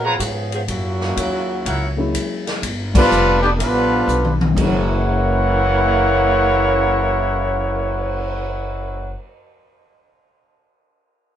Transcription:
Already playing: A#2
0.04 F3 B3 C#4 F4 G#4 B4 C#5 A#5
0.18 G#2 C#4 F#4, kick, hi-hat pedal, ride
0.22 F3 B3 G#4
0.52 F3 B3 C#4 G#4, ride
0.68 F#2 A#2 C#3 F#3 A#3 C#4 E4 F#4, kick, ride
1.01 snare
1.17 D#2, kick, hi-hat pedal, ride
1.65 C#2 E4 A#4 C#5 F#5, kick, ride
1.97 F#3 G#3 A#3 C#4 E4
2.14 kick, hi-hat pedal, ride
2.47 snare, ride
2.62 G1, kick, ride
2.94 D3 F3 G3 A3 B3 D4 F4 B4, kick, crash
3.11 F1, hi-hat pedal
3.41 B2 D3 G3 B3 D4 G4
3.57 A1 D3 F3 G3 B3 D4 F4 B4, kick, ride
4.08 B1, hi-hat pedal
4.25 mid tom
4.41 mid tom
4.51 F#2 F#3
4.56 F#1 F#2 C#3 E3 G#3 A#3 E4 A#4 C#5 F#5, kick, crash
4.60 A#3 E4
4.89 cymbal swell

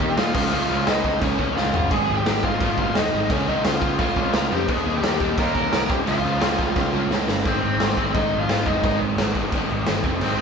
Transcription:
Already playing: G4 G5
0.00 D#2 D#3 A#3 D#4, kick
0.17 A#2 D#3 A#3 D#4 F4 F5, snare, crash
0.34 C#2 C#3 G#3 C#4 F4 F5, kick, crash
0.52 C#2 C#3 G#3 C#4 F4 F5, crash
0.70 C#2 C#3 G#3 C#4
0.87 C#2 C#3 G#3 C#4 D#4 D#5, snare, crash
1.04 C#2 C#3 G#3 C#4, kick
1.22 C#2 C#3 G#3 C#4 C#5, kick, crash
1.39 C#2 C#3 G#3 C#4, kick
1.55 C#2 C#3 G#3 C#4 F4 F5, snare
1.74 G1 C#3 G#3 C#4, floor tom
1.91 G#1 G#2 D#3 G#3 G#4 G#5, kick, crash
2.08 G#2 D#3 G#3
2.17 G4 G5
2.26 G#1 G#2 D#3 G#3, snare, crash
2.43 G#1 G#2 D#3 G#3 F4 F5, kick
2.61 G#1 G#2 D#3 G#3, kick, crash
2.78 G#1 G#2 D#3 G#3 F4 F5, kick
2.95 D#2 G#2 D#3 G#3 D#4 D#5, snare, crash
3.13 G#1 G#2 D#3 G#3
3.30 C#2 C#3 G#3 C#4 C#5, kick, crash
3.48 C#2 C#3 G#3 C#4 D#4 D#5
3.64 C#2 C#3 G#3 C#4 F4 F5, snare, crash
3.82 C#2 C#3 G#3 C#4, kick
3.99 C#2 C#3 G#3 C#4 F4 F5, kick, crash
4.16 C#2 C#3 G#3 C#4, kick
4.33 C#2 C#3 G#3 C#4 F4 F5, snare, crash
4.51 F2 C#3 G#3 C#4 G4 G5
4.68 D#2 D#3 A#3 D#4 G#4 G#5, kick, crash
4.85 D#3 A#3 D#4
4.97 G4 G5
5.02 D#2 D#3 A#3 D#4, snare, crash
5.20 D#2 D#3 A#3 D#4, kick
5.38 D#2 D#3 A#3 D#4 A#4 A#5, kick, crash
5.55 D#2 D#3 A#3 D#4, kick
5.72 C2 D#3 A#3 D#4, snare, crash
5.89 C#2 C#3 G#3 C#4 G4 G5, kick
6.06 C#2 C#3 G#3 C#4 F4 F5, crash
6.23 C#2 C#3 G#3 C#4
6.41 C#2 C#3 G#3 C#4, snare, crash
6.58 C#2 C#3 G#3 C#4, kick
6.76 C#2 C#3 G#3 C#4, kick, snare
6.93 C#2 C#3 G#3 C#4
7.10 C#2 C#3 G#3 C#4, snare
7.27 G1 C#3 G#3 C#4, snare
7.45 G#1 G#2 D#3 G#3 C4 C5, kick, crash
7.64 G#1
7.80 G#1 G#2 D#3 G#3, snare, crash
7.97 G#1 G#2 D#3 G#3, kick
8.14 G#1 G#2 D#3 G#3 D#4 D#5, kick, crash
8.34 G#1
8.39 F4 F5
8.49 G#1 G#2 D#3 G#3, snare, crash
8.66 F1 G#2 D#3 G#3 D#4 D#5, kick
8.83 G#1 G#2 D#3 G#3, kick, crash
9.01 G#1
9.18 G#1 G#2 D#3 G#3, snare, crash
9.35 G#1 G#2 D#3 G#3, kick
9.52 G#1 G#2 D#3 G#3, kick, crash
9.71 G#1
9.86 G1 G#2 D#3 G#3, snare, crash
10.04 F1 F2 C3 F3, kick
10.21 G#1 G#2 D#3 G#3 C4 C5, crash

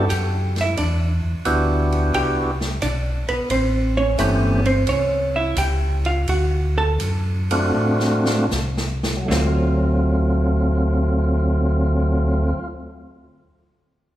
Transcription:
0.09 F#2 G4 G5, kick, hi-hat pedal, ride
0.56 snare, ride
0.61 E4 E5
0.77 E2 D4 D5, kick, ride
1.24 E2
1.45 D2 B3 D4 E4 F#4 G4, kick, hi-hat pedal, ride
1.92 ride
2.14 C2 G4 G5, kick, ride
2.61 snare
2.82 B1 D4 D5, kick, hi-hat pedal, ride
3.28 B1 B3 B4, ride
3.50 A1 C4 C5, kick, ride
3.97 C#4 C#5
4.18 G1 E3 A3 B3 C4 C#4 G4 B4, kick, hi-hat pedal, ride
4.65 C4 C5, ride
4.87 C2 C#4 C#5, kick, ride
5.36 E4 E5
5.56 C#2 G4 G5, kick, hi-hat pedal, ride
6.05 F4 F5, ride
6.28 D2 F#4 F#5, kick, ride
6.78 A4 A5
7.00 F#2, kick, hi-hat pedal, ride
7.51 A3 C4 D4 F4 F#4, ride
7.75 A2
8.00 snare
8.26 snare
8.51 C2, snare, hi-hat pedal
8.77 snare
9.03 snare
9.17 F#3
9.25 D3 A3
9.30 D2 F#3 C4 F4, snare
9.34 C4
9.42 F4

